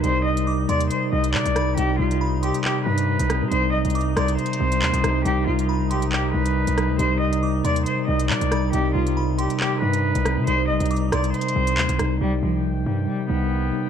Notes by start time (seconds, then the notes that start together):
Already playing: C3 D#3 G3 D#4
0.03 C2 C3 G3 D#4 C5, closed hi-hat
0.25 D#5
0.37 closed hi-hat
0.47 D6
0.69 D#2 D5 C6, closed hi-hat
0.80 closed hi-hat
0.91 C5, closed hi-hat
1.12 C2 C3 G3 D#4 D#5
1.24 closed hi-hat
1.34 C3 D5, clap
1.46 C2, closed hi-hat
1.55 C3 G3 D#4 B5, cross-stick, closed hi-hat
1.77 C2 C3 D#3 G3 D#4 G4, closed hi-hat
1.99 C2 F4
2.11 closed hi-hat
2.21 B5
2.43 G4 C6, closed hi-hat
2.54 closed hi-hat
2.64 G4, clap
2.86 G2 C3 G3 D#4 B4
2.98 closed hi-hat
3.19 C2, closed hi-hat
3.30 C3 G3 C4, cross-stick, closed hi-hat
3.41 C3
3.51 C2 C3 G3 D#4 C5, closed hi-hat
3.73 B1 D#5
3.85 C2, closed hi-hat
3.90 closed hi-hat
3.95 D6, closed hi-hat
4.01 closed hi-hat
4.16 C2 D5 C6, cross-stick, closed hi-hat
4.28 closed hi-hat
4.38 C5, closed hi-hat
4.46 closed hi-hat
4.53 closed hi-hat
4.60 C2 C3 G3 C4
4.72 closed hi-hat
4.82 D#2, clap
4.93 C2, closed hi-hat
5.03 C2 C3 G3 D#4, cross-stick, closed hi-hat
5.25 C2 C3 G3 D#4 G4, closed hi-hat
5.47 C2 F4
5.59 closed hi-hat
5.69 B5
5.90 B1 G4 C6, closed hi-hat
6.02 closed hi-hat
6.12 C2 G4, clap
6.33 C2 C3 G3 D#4 B4
6.46 closed hi-hat
6.67 C2, closed hi-hat
6.76 C3 G3 D#4, cross-stick, closed hi-hat
6.89 D2
6.98 C2 C3 G3 D#4 C5, closed hi-hat
7.21 D#5
7.33 closed hi-hat
7.43 D6
7.64 D#2 D5 C6, closed hi-hat
7.76 closed hi-hat
7.86 C5, closed hi-hat
8.07 C2 C3 G3 D#4 D#5
8.20 closed hi-hat
8.30 C3 D5, clap
8.41 C2, closed hi-hat
8.50 C3 G3 D#4 B5, cross-stick, closed hi-hat
8.73 C2 C3 G3 D#4 G4, closed hi-hat
8.95 C2 F4
9.07 closed hi-hat
9.17 B5
9.38 G4 C6, closed hi-hat
9.50 closed hi-hat
9.60 G4, clap
9.81 G2 C3 G3 D#4 B4
9.93 closed hi-hat
10.15 C2, closed hi-hat
10.25 C3 G3 C4, cross-stick, closed hi-hat
10.37 C3
10.47 C2 C3 G3 D#4 C5, closed hi-hat
10.69 B1 D#5
10.80 C2, closed hi-hat
10.86 closed hi-hat
10.91 D6, closed hi-hat
10.96 closed hi-hat
11.12 C2 D5 C6, cross-stick, closed hi-hat
11.24 closed hi-hat
11.34 C5, closed hi-hat
11.41 closed hi-hat
11.48 closed hi-hat
11.55 C2 C3 G3 C4
11.67 closed hi-hat
11.78 D#2, clap
11.89 C2, closed hi-hat
11.98 C2 C3 G3 D#4, cross-stick, closed hi-hat
12.21 C2 C3 D#3 G3 D#4 G4 G5
12.43 C2 F3
12.64 B1
12.76 C2
12.86 G2 G3
13.08 G3
13.29 C2 C3 G3 B3 D#4
13.72 C3 G3 D#4